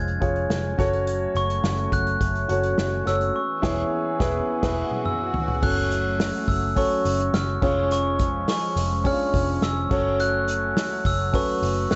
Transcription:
Already playing: F1 F3 G#3 C#4 F4 G#4 C#5 G#6
0.08 closed hi-hat
0.20 F1 F4 G#4 C#5, kick, closed hi-hat
0.36 closed hi-hat
0.50 F1, snare
0.78 F#1 F#3 A3 F#4 A4 C#5, kick, snare, closed hi-hat
0.93 closed hi-hat
1.07 closed hi-hat
1.35 F#1 C#6, closed hi-hat
1.50 closed hi-hat
1.64 F#1, snare
1.78 closed hi-hat
1.92 F#1 F#6, kick, closed hi-hat
2.07 closed hi-hat
2.21 F#1, kick, closed hi-hat
2.35 closed hi-hat
2.48 F#1 F#4 A4 C#5, closed hi-hat
2.63 closed hi-hat
2.78 F#1, snare
3.05 F#1 F#4 A4 C#5 E6, snare, closed hi-hat
3.21 closed hi-hat
3.35 E3 B3 G#4 C#6, swell
3.62 E1 E3 E4 G#4 C#5, kick, snare, crash
4.19 E1 E4 G#4 B4, kick, snare
4.62 E1 E4 G#4 B4, kick, snare, crash
4.91 mid tom
5.05 E6, mid tom
5.34 floor tom
5.48 floor tom
5.62 F#1 F#3 A3 C#4 F#4 A4 C#5 F#6, kick, crash
5.91 hi-hat pedal, open hi-hat
6.20 snare, hi-hat pedal, open hi-hat
6.48 F#1 E6, kick, hi-hat pedal, open hi-hat
6.76 C#4 F#4 A4 C#5 C#6, kick, hi-hat pedal, open hi-hat
6.91 open hi-hat
7.05 F#1, hi-hat pedal, open hi-hat
7.19 hi-hat pedal
7.33 F#1 F6, snare, hi-hat pedal, open hi-hat
7.62 F1 F3 G#3 C#4 F4 G#4 C#5, kick, snare, crash
7.91 C#6, hi-hat pedal, open hi-hat
8.19 kick, hi-hat pedal, open hi-hat
8.48 C#6, snare, hi-hat pedal, open hi-hat
8.76 F1, hi-hat pedal, open hi-hat
9.04 C#4 D4 G#4 C#5 F6, kick, hi-hat pedal, open hi-hat
9.12 F4
9.34 F1, kick, hi-hat pedal, open hi-hat
9.62 F1 E6, snare, hi-hat pedal, open hi-hat
9.90 F#1 F#3 A3 C#4 F#4 A4 C#5, kick, snare, crash
10.20 F#6, hi-hat pedal, open hi-hat
10.48 hi-hat pedal, open hi-hat
10.77 snare, hi-hat pedal, open hi-hat
11.05 F#1 E6, kick, hi-hat pedal, open hi-hat
11.33 C#4 F#4 A4 B4 C#6, kick, hi-hat pedal, open hi-hat
11.62 F#1, hi-hat pedal, open hi-hat
11.91 F#1 F#6, snare, hi-hat pedal, open hi-hat

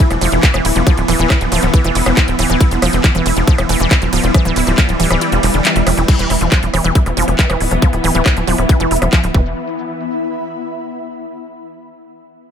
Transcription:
Already playing: E3 B3 E4 E5 E6
0.11 E1 F3, cross-stick, closed hi-hat
0.21 E1 F3, open hi-hat, ride
0.32 E1 F3, closed hi-hat
0.43 E3, kick, clap, closed hi-hat, ride
0.54 E1 E3, cross-stick, closed hi-hat
0.65 D1 E4, open hi-hat, ride
0.76 E1 F3, closed hi-hat
0.87 F3, kick, cross-stick, closed hi-hat, ride
0.97 D1 F3, closed hi-hat
1.08 D1 E3, open hi-hat, ride
1.19 D1 E3, closed hi-hat
1.30 E4, kick, cross-stick, clap, closed hi-hat, ride
1.41 D1 F3, closed hi-hat
1.52 D1 F3, open hi-hat, ride
1.63 D1 F3, cross-stick, closed hi-hat
1.74 E3, kick, closed hi-hat, ride
1.84 E1 E3, closed hi-hat
1.95 E1 E4, open hi-hat, ride
2.06 E1 F3, cross-stick, closed hi-hat
2.17 F3, kick, clap, closed hi-hat, ride
2.28 D1 F3, closed hi-hat
2.39 D1 E3, cross-stick, open hi-hat, ride
2.50 D1 E3, closed hi-hat
2.60 G3 E4, kick, closed hi-hat, ride
2.71 E1 F3, closed hi-hat
2.82 E1 F3, cross-stick, open hi-hat, ride
2.93 E1 F3, closed hi-hat
3.04 E3, kick, clap, closed hi-hat, ride
3.15 E1 E3, cross-stick, closed hi-hat
3.26 E1 E4, open hi-hat, ride
3.37 E1 F3, closed hi-hat
3.47 F3, kick, closed hi-hat, ride
3.58 E1 F3, cross-stick, closed hi-hat
3.69 E1 E3, open hi-hat, ride
3.80 E1 E3, closed hi-hat
3.91 E4, kick, cross-stick, clap, closed hi-hat, ride
4.02 E1 F3, closed hi-hat
4.13 D1 F3, open hi-hat, ride
4.24 E1 F3, closed hi-hat
4.34 E3, kick, cross-stick, closed hi-hat, ride
4.45 D1 E3, closed hi-hat
4.56 D1 E4, open hi-hat, ride
4.67 D1 F3, cross-stick, closed hi-hat
4.78 F3, kick, clap, closed hi-hat, ride
4.89 D1 F3, closed hi-hat
5.00 D1 E3, open hi-hat, ride
5.10 D1 E3, cross-stick, closed hi-hat
5.21 E4, closed hi-hat, ride
5.32 E1 F3, closed hi-hat
5.43 E1 F3, cross-stick, open hi-hat, ride
5.54 E1 D3, closed hi-hat
5.65 E3, clap, closed hi-hat, ride
5.76 E1 E4, closed hi-hat
5.87 E1 E3, cross-stick, open hi-hat, ride
5.97 E1 E3, closed hi-hat
6.08 E3 B3, kick, closed hi-hat, crash
6.19 E1 E3, closed hi-hat
6.30 E1 E4, cross-stick, open hi-hat
6.38 E1 F3 E5, closed hi-hat
6.52 F3, kick, clap, closed hi-hat
6.57 E4
6.63 E1 F3 B5, closed hi-hat
6.74 E1 E3, cross-stick, open hi-hat
6.84 E1 E3, closed hi-hat
6.95 E4, kick, closed hi-hat
7.06 E1 F3, cross-stick, closed hi-hat
7.17 E1 F3, open hi-hat
7.22 closed hi-hat
7.28 E1 F3, closed hi-hat
7.39 E3, kick, clap, closed hi-hat
7.50 E1 E3, cross-stick, closed hi-hat
7.61 D1 E4, open hi-hat
7.71 E1 F3, closed hi-hat
7.82 F3, kick, cross-stick, closed hi-hat
7.93 D1 F3, closed hi-hat
8.04 D1 E3, open hi-hat
8.15 D1 E3, closed hi-hat
8.26 E4, kick, cross-stick, clap, closed hi-hat
8.37 D1 F3, closed hi-hat
8.47 D1 F3, open hi-hat
8.58 D1 F3, cross-stick, closed hi-hat
8.69 E3, kick, closed hi-hat
8.80 E1 E3, closed hi-hat
8.91 E1 E4, open hi-hat
8.96 closed hi-hat
9.02 E1 F3, cross-stick, closed hi-hat
9.13 F3, kick, clap, closed hi-hat
9.24 D1 F3, closed hi-hat
9.34 E1 E3 B3, kick
9.41 E4
9.69 E5
9.76 B5

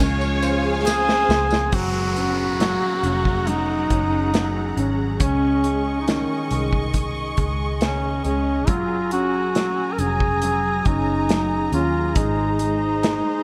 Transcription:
Already playing: G#5
0.00 C#2 C#3 F3 G#3 C#4 F4 G#4 C#5 F5
0.21 tambourine
0.42 C5, ride, tambourine
0.85 F3 G#3 C4 F4 G#4 C5, snare, tambourine
1.09 snare
1.29 C#2 C5, snare, tambourine
1.51 snare, tambourine
1.72 F#1 F#3 F#4 G#4 F#5 A#5, kick, closed hi-hat, downlifter
2.16 C#4, closed hi-hat
2.60 F#3, snare, closed hi-hat
3.03 F1 C#4, closed hi-hat
3.25 kick
3.47 F#3 D#4, closed hi-hat
3.90 F#1 C#4, kick, closed hi-hat
4.33 F#3, snare, closed hi-hat
4.77 G#1 C#4, closed hi-hat
5.19 C#2 C#4 D#5 C#6, kick, closed hi-hat
5.64 G#3, closed hi-hat
6.01 D#4
6.08 D#3 C#4, snare, closed hi-hat
6.51 C2 G#3, closed hi-hat
6.73 kick
6.94 kick, closed hi-hat
7.37 C#2 G#3, kick, closed hi-hat
7.81 C#3 C#4, snare, closed hi-hat
8.24 C#2 G#3 C#4, closed hi-hat
8.67 F#1 F#3 F4 G#5 A#5, kick, closed hi-hat
9.11 C#4 F#4, closed hi-hat
9.55 F#3, snare, closed hi-hat
9.92 A#4
9.98 F1 C#4 G#4, closed hi-hat
10.20 kick
10.42 F#3, closed hi-hat
10.85 F#1 C#4 D#4, kick, closed hi-hat
11.29 F#3, snare, closed hi-hat
11.72 D#2 C#4 F4, closed hi-hat
12.15 G#1 G#3 D#4 C5, kick, closed hi-hat
12.59 G#3, closed hi-hat
13.03 G#3, snare, closed hi-hat

